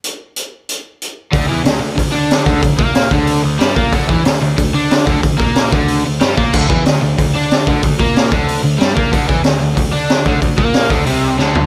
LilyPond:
<<
  \new Staff \with { instrumentName = "Overdriven electric guitar" } { \clef bass \time 4/4 \key c \mixolydian \tempo 4 = 185 r1 | d8 e8 d8 d8 d8 d'4 d8 | d8 bes4 d4 d8 g8 bes8 | d8 e8 d8 d8 d8 d'4 d8 |
d8 bes4 d4 d8 g8 bes8 | d8 e8 d8 d8 d8 d'4 d8 | d8 bes4 d4 d8 g8 bes8 | d8 e8 d8 d8 d8 d'4 d8 |
d8 bes4 d8 c4 d4 | }
  \new Staff \with { instrumentName = "Picked electric bass" } { \clef bass \time 4/4 \key c \mixolydian r1 | d,8 e,8 d,8 d,8 d,8 d4 d,8 | d,8 bes,4 d,4 d,8 g,8 bes,8 | d,8 e,8 d,8 d,8 d,8 d4 d,8 |
d,8 bes,4 d,4 d,8 g,8 bes,8 | d,8 e,8 d,8 d,8 d,8 d4 d,8 | d,8 bes,4 d,4 d,8 g,8 bes,8 | d,8 e,8 d,8 d,8 d,8 d4 d,8 |
d,8 bes,4 d,8 c,4 d,4 | }
  \new DrumStaff \with { instrumentName = "Drums" } \drummode { \time 4/4 hh4 hh4 hh4 hh4 | <hho bd>4 <hho sn>4 <hho bd>4 <hho sn>8 bd8 | <hho bd>8 bd8 <hho sn>8 bd8 hho4 <hho sn>8 bd8 | <hho bd>8 bd8 <hho sn>4 <hho bd>4 <hho sn>8 bd8 |
<hho bd>8 bd8 <hho sn>8 bd8 hho4 <hho sn>8 bd8 | <cymc bd>8 bd8 <hho sn>4 <hho bd>4 <hho sn>8 bd8 | <hho bd>8 bd8 <hho sn>8 bd8 hho4 <hho sn>8 bd8 | <hho bd>8 bd8 <hho sn>4 <hho bd>4 <hho sn>8 bd8 |
<hho bd>8 bd8 <hho sn>8 bd8 hho4 sn8 tomfh8 | }
>>